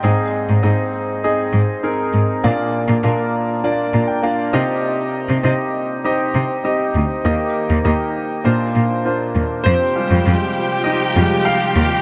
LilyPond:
<<
  \new Staff \with { instrumentName = "Violin section" } { \time 4/4 \key f \dorian \tempo 4 = 100 r1 | r1 | r1 | r1 |
<g' g''>1 | }
  \new Staff \with { instrumentName = "Grand piano" } { \time 4/4 \key f \dorian << { g''16 r2. r8. | r2 r8 bes''16 g''16 f''8 ees''8 | r1 | r1 |
<c' c''>4. r8 <ees' ees''>4 <f' f''>4 | } \\ { <c' ees' aes' ees''>4 <c' ees' aes' ees''>4 <c' ees' aes' ees''>4 <c' ees' aes' bes'>4 | <bes d' f' d''>4 <bes d' f' bes'>4 <bes d' f' d''>4 <bes d' f' d''>8 <c' ees' g'>8~ | <c' ees' g'>4 <c' ees' g' ees''>4 <c' ees' g' ees''>4 <c' ees' g' ees''>4 | <bes ees' g' ees''>4 <bes ees' g' ees''>4 <bes d' f' c''>4 <bes d' f' c''>4 |
r1 | } >> }
  \new Staff \with { instrumentName = "Grand piano" } { \clef bass \time 4/4 \key f \dorian aes,4. r2 r8 | bes,4. r2 c8~ | c4 r2. | ees4. r8 bes,4. r8 |
r8 <g aes f'>8 r4. <g aes f'>8 r4 | }
  \new Staff \with { instrumentName = "String section" } { \time 4/4 \key f \dorian r1 | r1 | r1 | r1 |
<c f f' g'>1 | }
  \new Staff \with { instrumentName = "Cello" } { \clef bass \time 4/4 \key f \dorian aes,8. aes,16 aes,4. aes,4 aes,8 | bes,8. bes,16 bes,4. bes,4 c8~ | c8. c16 c4. c4 d,8 | ees,8. ees,16 ees,4 bes,8 bes,4 ees,8 |
f,8. f,16 f,4. f,4 ees,8 | }
>>